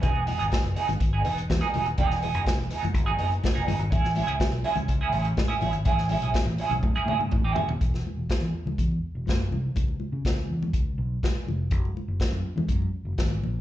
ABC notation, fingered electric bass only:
X:1
M:4/4
L:1/16
Q:1/4=123
K:Alyd
V:1 name="Fingered electric bass" clef=bass
E,,,3 G,,, z F,,, z G,,, G,,,2 E,,,2 E,, z E,,, D,,, | E,,,3 F,,, z E,,, z F,,, G,,,2 F,,,2 z E,,, =G,,, ^G,,, | A,,,3 C,, z B,,, z C,, C,,2 A,,,2 A,, z A,,, G,,, | A,,,3 B,,, z A,,, z B,,, A,, z A,, G,, A,, A,,, z D,,, |
[K:F#m] E,,,2 z E,,, z E,, z C,, E,,2 z E,,, F,,,2 =C,,2 | C,,2 z C, C,,2 E,,2 C,,2 B,,,2 z2 =F,,,2 | F,,,2 z F,,, z F,, z E,, F,,2 z F,,, G,,,2 ^A,,,2 |]